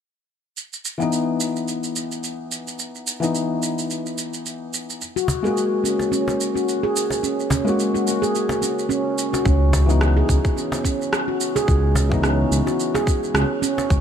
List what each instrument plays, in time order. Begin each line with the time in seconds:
0.57 shaker
0.73 shaker
0.85 shaker
0.98 felt piano E3 B3, shaker
1.02 felt piano D#4
1.13 shaker
1.40 shaker
1.56 shaker
1.68 shaker
1.84 shaker
1.96 shaker
2.12 shaker
2.24 shaker
2.52 shaker
2.68 shaker
2.79 shaker
2.95 shaker
3.07 shaker
3.20 felt piano E3 B3 D#4, shaker
3.35 shaker
3.63 shaker
3.79 shaker
3.91 shaker
4.06 shaker
4.18 shaker
4.34 shaker
4.46 shaker
4.74 shaker
4.90 shaker
5.01 shaker
5.16 handpan F#4, shaker
5.28 cajon bass, cajon slap, shaker
5.43 felt piano G#3 A#3 F#4, handpan G#4, shaker
5.58 shaker
5.84 handpan C#4, shaker
5.99 cajon slap, shaker
6.12 handpan C#4, shaker
6.28 cajon slap, shaker
6.41 shaker
6.55 handpan F#4, shaker
6.69 shaker
6.83 handpan G#4
6.96 shaker
7.10 cajon slap, shaker
7.23 handpan C#4, shaker
7.40 shaker
7.50 handpan C#4, cajon bass, cajon slap, shaker
7.65 felt piano G#3 A#3, shaker
7.69 felt piano F#4
7.80 shaker
7.95 handpan F#4, shaker
8.08 shaker
8.22 handpan G#4, shaker
8.35 shaker
8.49 cajon slap, shaker
8.62 handpan C#4, shaker
8.79 shaker
8.89 handpan C#4, shaker
9.18 shaker
9.33 handpan F#4, cajon slap, shaker
9.45 analog synth bass C#2, handpan C#4, kick, shaker
9.73 cajon bass, cajon slap, shaker
9.86 felt piano E3 B3 D#4, handpan F#4, shaker
10.01 cross-stick, shaker
10.17 handpan G#4
10.29 analog synth bass C#2, kick, shaker
10.45 kick, shaker
10.56 handpan C#4, shaker
10.72 cajon slap, shaker
10.84 handpan C#4, kick, shaker
11.02 shaker
11.13 cross-stick, shaker
11.28 handpan F#4
11.41 shaker
11.56 handpan G#4, cajon slap, shaker
11.68 analog synth bass C#2, kick, shaker
11.95 handpan C#4, cajon bass, cajon slap, shaker
12.09 felt piano E3 B3, kick, shaker
12.13 felt piano D#4
12.23 handpan C#4, cross-stick, shaker
12.51 analog synth bass C#2, shaker
12.67 handpan F#4, cajon slap, shaker
12.80 shaker
12.95 handpan G#4, cajon slap, shaker
13.07 kick, shaker
13.23 shaker
13.34 analog synth bass C#2, handpan C#4, cross-stick, shaker
13.62 handpan C#4, shaker
13.78 cajon slap, shaker
13.90 analog synth bass C#2, kick, shaker